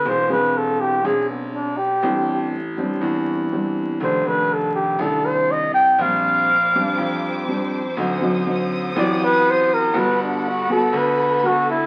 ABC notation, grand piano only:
X:1
M:4/4
L:1/8
Q:1/4=121
K:G
V:1 name="Grand piano" clef=bass
E,,,4 B,,,4 | A,,,4 E,,4 | =F,,,4 C,,4 | _B,,,4 =F,,4 |
D,,4 A,,,4 | G,,,4 D,,4 |]